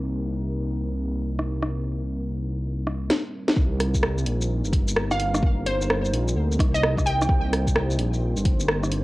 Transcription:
Already playing: detuned saw bass C2, analog synth pad G3 A#3 C4 D#4 A#4
1.39 cross-stick
1.62 cross-stick
2.87 cross-stick
3.10 snare
3.48 snare
3.56 detuned saw bass C2, analog synth pad G3 A#3 C4 D#4 A#4, kick
3.80 cross-stick, open hi-hat
3.95 kick, shaker
4.03 cross-stick
4.18 shaker
4.26 detuned saw bass A#1, open hi-hat
4.42 shaker
4.65 detuned saw bass G1, shaker
4.73 kick, open hi-hat
4.88 shaker
4.97 cross-stick
5.11 synth pluck F5, cross-stick, shaker
5.20 open hi-hat
5.35 cross-stick, shaker
5.43 kick
5.66 synth pluck C5, open hi-hat
5.82 shaker
5.90 cross-stick
6.05 shaker
6.13 detuned saw bass A#1, open hi-hat
6.28 shaker
6.36 detuned saw bass D2
6.52 shaker
6.59 detuned saw bass C2, kick, cross-stick, open hi-hat
6.74 synth pluck D#5, shaker
6.83 cross-stick
6.97 kick, cross-stick, shaker
7.06 synth pluck G5, open hi-hat
7.22 cross-stick, shaker
7.29 detuned saw bass C2, analog synth pad C5, kick
7.53 cross-stick, open hi-hat
7.67 kick, shaker
7.76 cross-stick
7.90 shaker
7.98 detuned saw bass A#1, open hi-hat
8.13 shaker
8.36 detuned saw bass G1, shaker
8.45 kick, open hi-hat
8.60 shaker
8.68 cross-stick
8.83 cross-stick, shaker
8.91 open hi-hat

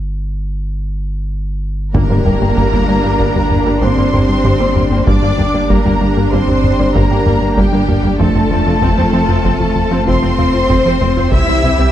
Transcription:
Already playing: sub bass G1
1.94 sub bass G1, double bass section G1, analog synth bass G2, synth arpeggio sound G3, french horn section G3 D4, viola section A#3 D4, cello section A#3, violin section A#4 A#5, taiko, impact
2.10 double bass section G1, analog synth bass G2, synth arpeggio sound A#3, viola section A#3
2.26 double bass section G1, analog synth bass G2, viola section A#3, synth arpeggio sound G4, taiko low-mid
2.41 double bass section G1, analog synth bass G2, viola section A#3, synth arpeggio sound G4
2.57 double bass section G1, analog synth bass G2, synth arpeggio sound G3, viola section A#3, taiko
2.72 double bass section G1, analog synth bass G3, viola section A#3, synth arpeggio sound D4, taiko low-mid
2.88 double bass section G1, analog synth bass G3, viola section A#3, synth arpeggio sound D4
3.04 double bass section G1, analog synth bass G2, synth arpeggio sound A#3, viola section A#3
3.19 double bass section G1, analog synth bass G2, synth arpeggio sound G3, viola section A#3, taiko
3.35 analog synth bass G2, taiko low-mid
3.51 analog synth bass G2, taiko low-mid
3.66 double bass section G1, analog synth bass G3, viola section A#3, synth arpeggio sound D4
3.82 double bass section G1, analog synth bass G2, synth arpeggio sound G3, viola section A#3, cello section C4, violin section C5 C6, taiko
3.98 double bass section G1, analog synth bass G2, viola section A#3, synth arpeggio sound G4
4.13 double bass section G1, analog synth bass G2, viola section A#3, synth arpeggio sound G4, taiko low-mid
4.29 analog synth bass G2
4.44 double bass section G1, analog synth bass G2, synth arpeggio sound G3, viola section A#3, taiko
4.60 double bass section G1, analog synth bass G3, viola section A#3, synth arpeggio sound D4
4.75 double bass section G1, analog synth bass G2, viola section A#3, synth arpeggio sound A#3, taiko low-mid
4.91 double bass section G1, analog synth bass G2, viola section A#3, synth arpeggio sound G4, taiko low-mid
5.06 double bass section G1, sub bass G1, analog synth bass G2, french horn section G3 D4, synth arpeggio sound G3, viola section A#3 D4, cello section D4, violin section D5 D6, taiko
5.22 double bass section G1, analog synth bass G2, viola section A#3, synth arpeggio sound A#3
5.38 double bass section G1, analog synth bass G2, viola section A#3, synth arpeggio sound G4, taiko low-mid
5.53 double bass section G1, analog synth bass G2, viola section A#3, synth arpeggio sound G4
5.69 double bass section G1, analog synth bass G2, synth arpeggio sound G3, viola section A#3, cello section A#3, violin section A#4 A#5, taiko
5.85 double bass section G1, analog synth bass G3, viola section A#3, synth arpeggio sound D4, taiko low-mid
6.00 double bass section G1, analog synth bass G3, viola section A#3, synth arpeggio sound D4
6.16 double bass section G1, analog synth bass G2, viola section A#3, synth arpeggio sound A#3
6.32 double bass section G1, analog synth bass G2, synth arpeggio sound G3, viola section A#3, cello section C4, violin section C5 C6, taiko
6.48 analog synth bass G2, taiko low-mid
6.64 analog synth bass G2, taiko low-mid
6.79 double bass section G1, analog synth bass G3, viola section A#3, synth arpeggio sound D4
6.94 double bass section G1, analog synth bass G2, synth arpeggio sound G3, viola section A#3, cello section A#3, violin section A#4 A#5, taiko
7.11 double bass section G1, analog synth bass G2, viola section A#3, synth arpeggio sound G4
7.26 double bass section G1, analog synth bass G2, viola section A#3, synth arpeggio sound G4, taiko low-mid
7.42 analog synth bass G2
7.57 double bass section G1, analog synth bass G2, synth arpeggio sound G3, cello section G3, viola section A#3, violin section G4 G5, taiko
7.72 double bass section G1, analog synth bass G3, viola section A#3, synth arpeggio sound D4
7.88 double bass section G1, analog synth bass G2, viola section A#3, synth arpeggio sound A#3, taiko low-mid
8.04 double bass section G1, analog synth bass G2, viola section A#3, synth arpeggio sound G4, taiko low-mid
8.19 sub bass F1, double bass section F1, analog synth bass F2, synth arpeggio sound F3, cello section A3, french horn section A3, viola section C4 F4, violin section A4 A5, taiko
8.35 double bass section F1, analog synth bass F2, synth arpeggio sound A3, viola section C4
8.51 double bass section F1, analog synth bass F2, viola section C4, synth arpeggio sound F4, taiko low-mid
8.66 double bass section F1, analog synth bass F2, viola section C4, synth arpeggio sound F4
8.82 double bass section F1, analog synth bass F2, synth arpeggio sound F3, french horn section C4, viola section C4, taiko
8.97 double bass section F1, analog synth bass F3, synth arpeggio sound C4, viola section C4, taiko low-mid
9.13 double bass section F1, analog synth bass F3, synth arpeggio sound C4, viola section C4
9.29 double bass section F1, analog synth bass F2, synth arpeggio sound A3, viola section C4
9.44 double bass section F1, analog synth bass F2, synth arpeggio sound F3, viola section C4, taiko
9.60 analog synth bass F2, taiko low-mid
9.75 analog synth bass F2, taiko low-mid
9.91 double bass section F1, analog synth bass F3, viola section C4, synth arpeggio sound C4
10.06 double bass section F1, analog synth bass F2, synth arpeggio sound F3, viola section C4, cello section C4, violin section C5 C6, taiko
10.22 double bass section F1, analog synth bass F2, viola section C4, synth arpeggio sound F4
10.38 double bass section F1, analog synth bass F2, viola section C4, synth arpeggio sound F4, taiko low-mid
10.54 analog synth bass F2
10.69 double bass section F1, analog synth bass F2, synth arpeggio sound F3, viola section C4, taiko
10.85 double bass section F1, analog synth bass F3, synth arpeggio sound C4, viola section C4
11.01 double bass section F1, analog synth bass F2, synth arpeggio sound A3, viola section C4, taiko low-mid
11.16 double bass section F1, analog synth bass F2, viola section C4, synth arpeggio sound F4, taiko low-mid
11.32 double bass section C2, sub bass C2, analog synth bass C2, synth arpeggio sound C3, french horn section G3, viola section C4 G4, cello section E4, violin section E5 E6, taiko
11.47 double bass section C2, analog synth bass C2, synth arpeggio sound E3, viola section C4
11.63 double bass section C2, analog synth bass C2, viola section C4, synth arpeggio sound C4, taiko low-mid
11.78 double bass section C2, analog synth bass C2, viola section C4, synth arpeggio sound C4

